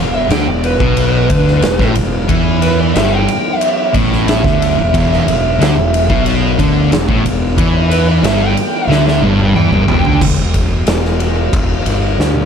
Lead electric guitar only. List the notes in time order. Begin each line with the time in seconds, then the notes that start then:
Already playing: F5
0.14 E5
0.31 G5
0.48 D5
0.64 B4
2.62 B4
2.79 D5
2.95 E5
3.11 G5
3.57 E5
3.77 E5
3.94 D5
4.28 E5
7.90 B4
8.07 D5
8.24 E5
8.40 G5
8.88 E5
9.07 E5
9.22 D5
9.56 G5